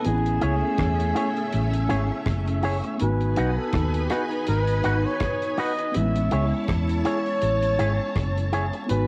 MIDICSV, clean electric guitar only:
0, 0, Header, 1, 3, 480
1, 0, Start_track
1, 0, Tempo, 737101
1, 31, Time_signature, 4, 2, 24, 8
1, 5907, End_track
2, 0, Start_track
2, 0, Title_t, "Clean electric guitar"
2, 0, Program_c, 0, 27
2, 269, Note_on_c, 0, 64, 91
2, 275, Note_on_c, 0, 68, 89
2, 282, Note_on_c, 0, 73, 86
2, 352, Note_off_c, 0, 64, 0
2, 355, Note_off_c, 0, 68, 0
2, 358, Note_off_c, 0, 73, 0
2, 750, Note_on_c, 0, 64, 87
2, 757, Note_on_c, 0, 68, 97
2, 762, Note_on_c, 0, 73, 95
2, 833, Note_off_c, 0, 64, 0
2, 836, Note_off_c, 0, 68, 0
2, 839, Note_off_c, 0, 73, 0
2, 1231, Note_on_c, 0, 64, 99
2, 1238, Note_on_c, 0, 68, 102
2, 1242, Note_on_c, 0, 73, 97
2, 1314, Note_off_c, 0, 64, 0
2, 1317, Note_off_c, 0, 68, 0
2, 1319, Note_off_c, 0, 73, 0
2, 1712, Note_on_c, 0, 64, 79
2, 1719, Note_on_c, 0, 68, 90
2, 1724, Note_on_c, 0, 73, 101
2, 1794, Note_off_c, 0, 64, 0
2, 1797, Note_off_c, 0, 68, 0
2, 1800, Note_off_c, 0, 73, 0
2, 2195, Note_on_c, 0, 63, 93
2, 2201, Note_on_c, 0, 66, 101
2, 2206, Note_on_c, 0, 71, 96
2, 2275, Note_off_c, 0, 63, 0
2, 2278, Note_off_c, 0, 66, 0
2, 2281, Note_off_c, 0, 71, 0
2, 2673, Note_on_c, 0, 63, 86
2, 2679, Note_on_c, 0, 66, 93
2, 2685, Note_on_c, 0, 71, 94
2, 2754, Note_off_c, 0, 63, 0
2, 2757, Note_off_c, 0, 66, 0
2, 2760, Note_off_c, 0, 71, 0
2, 3151, Note_on_c, 0, 63, 80
2, 3157, Note_on_c, 0, 66, 91
2, 3162, Note_on_c, 0, 71, 100
2, 3233, Note_off_c, 0, 63, 0
2, 3236, Note_off_c, 0, 66, 0
2, 3239, Note_off_c, 0, 71, 0
2, 3633, Note_on_c, 0, 63, 94
2, 3640, Note_on_c, 0, 66, 94
2, 3645, Note_on_c, 0, 71, 108
2, 3714, Note_off_c, 0, 63, 0
2, 3718, Note_off_c, 0, 66, 0
2, 3721, Note_off_c, 0, 71, 0
2, 4113, Note_on_c, 0, 64, 82
2, 4118, Note_on_c, 0, 68, 84
2, 4123, Note_on_c, 0, 73, 92
2, 4194, Note_off_c, 0, 64, 0
2, 4197, Note_off_c, 0, 68, 0
2, 4199, Note_off_c, 0, 73, 0
2, 4590, Note_on_c, 0, 64, 72
2, 4595, Note_on_c, 0, 68, 87
2, 4601, Note_on_c, 0, 73, 89
2, 4673, Note_off_c, 0, 64, 0
2, 4675, Note_off_c, 0, 68, 0
2, 4678, Note_off_c, 0, 73, 0
2, 5072, Note_on_c, 0, 64, 95
2, 5079, Note_on_c, 0, 68, 103
2, 5084, Note_on_c, 0, 73, 102
2, 5153, Note_off_c, 0, 64, 0
2, 5157, Note_off_c, 0, 68, 0
2, 5159, Note_off_c, 0, 73, 0
2, 5552, Note_on_c, 0, 64, 85
2, 5559, Note_on_c, 0, 68, 87
2, 5563, Note_on_c, 0, 73, 87
2, 5633, Note_off_c, 0, 64, 0
2, 5637, Note_off_c, 0, 68, 0
2, 5639, Note_off_c, 0, 73, 0
2, 5907, End_track
3, 0, Start_track
3, 0, Title_t, "Muted clean electric guitar strokes"
3, 1851, Note_on_c, 9, 29, 51
3, 1916, Note_off_c, 9, 29, 0
3, 5690, Note_on_c, 9, 29, 39
3, 5755, Note_off_c, 9, 29, 0
3, 5907, End_track
0, 0, End_of_file